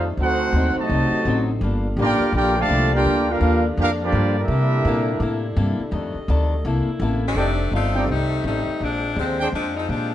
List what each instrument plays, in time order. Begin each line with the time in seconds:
Already playing: upright bass F2, saxophone section A#2 G3 A3 D#4
0.17 upright bass D2, saxophone section D3 F#3 C4 D#4, steel-string acoustic guitar D3 F#3 C4 D#4, trombone section A3 C4 F#4, trumpet section D#4 A4 C5 F#5
0.53 upright bass D#2, steel-string acoustic guitar D3 F#3 C4 D#4
0.76 trombone section C3 F#3 A3, trumpet section F#4 C5 D#5 A5, muted upright bass stroke
0.89 upright bass C2, steel-string acoustic guitar D3 F#3 C4 D#4
1.12 muted upright bass stroke
1.25 upright bass A1, steel-string acoustic guitar D3 F#3 C4 D#4
1.61 upright bass G1, steel-string acoustic guitar G2 F3 A#3 D4, saxophone section G3 D4 F4
1.97 upright bass A1, steel-string acoustic guitar G2 F3 A#3 D4, trombone section A#3 D4 G4, trumpet section D5
2.01 trumpet section F4 A#4 G5
2.20 muted upright bass stroke
2.32 upright bass A#1, steel-string acoustic guitar G2 F3 A#3 D4, trombone section A#3 D4 G4, trumpet section A#4 D5
2.36 trumpet section F4 G5
2.58 trombone section D3 F3 A3, trumpet section G4 D5 F5 A5
2.69 upright bass C2, steel-string acoustic guitar G2 F3 A#3 D4
2.92 trombone section A#3 D4 G4, trumpet section F4 A#4 D5 G5
3.06 upright bass D2, steel-string acoustic guitar G2 F3 A#3 D4
3.30 trombone section A#3 D4 F4, trumpet section D4 G4 A#4 F5
3.41 upright bass D#2, steel-string acoustic guitar G2 F3 A#3 D4
3.77 upright bass F2, steel-string acoustic guitar G2 F3 A#3 D4, trombone section A#3 D4 F4, trumpet section D4 G4 A#4 F5
4.02 trombone section F3 A#3 D4, trumpet section A#3 F4 G4 D5
4.12 upright bass G2, steel-string acoustic guitar G2 F3 A#3 D4
4.38 trombone section G3 A#3 E4, trumpet section D4 G4 A#4 E5
4.48 upright bass C3, steel-string acoustic guitar C3 A#3 E4 A4, saxophone section G3 E4
4.85 upright bass A#2, steel-string acoustic guitar C3 A#3 E4 A4
5.20 upright bass A2, steel-string acoustic guitar C3 A#3 E4 A4
5.56 upright bass G2, steel-string acoustic guitar C3 A#3 E4 A4
5.79 muted upright bass stroke
5.91 steel-string acoustic guitar F2 D#3 A3 D4, upright bass F2, saxophone section G3 A3 D#5
6.15 muted upright bass stroke
6.28 upright bass D2, steel-string acoustic guitar F2 D#3 A3 D4
6.65 upright bass C2, steel-string acoustic guitar C3 A#3 E4 A4, saxophone section D3 A#3 E4
6.87 muted upright bass stroke
7.00 upright bass A1, steel-string acoustic guitar C3 A#3 E4 A4
7.28 saxophone section G3 A3 C4 D4
7.35 upright bass F1, steel-string acoustic guitar F2 D#3 A3, grand piano C4 D4 D#4 G4 A4, trumpet section D#4 A4 D5 G5
7.39 steel-string acoustic guitar D4
7.72 upright bass G1, steel-string acoustic guitar F2 D#3 A3 D4, saxophone section A3 C4 D#4 F4
7.95 grand piano C4 D4 D#4 G4 A4, trumpet section D#4 A4 D5 G5
8.07 upright bass C2, steel-string acoustic guitar F2 D#3 A3 D4, saxophone section G3 A3 C4 D#4
8.44 upright bass A1, steel-string acoustic guitar F2 D#3 A3 D4, saxophone section G3 A3 C4 D#4
8.67 muted upright bass stroke
8.80 upright bass A#1, steel-string acoustic guitar A#2 G#3 D4 G4, saxophone section F3 C4 D4
8.84 saxophone section G#3
9.15 upright bass D#2, steel-string acoustic guitar A#2 G#3 D4 G4, saxophone section F3 G#3
9.19 saxophone section D3 C4
9.40 trumpet section D4 G#4 C5 G5
9.53 upright bass F2, steel-string acoustic guitar A#2 G#3 D4 G4, saxophone section F3 G#3 C4 D4
9.77 saxophone section F3 G#3 C4 D#4
9.88 steel-string acoustic guitar A#2 G#3 D4 G4, upright bass A#2, saxophone section F3 G#3 C4 D4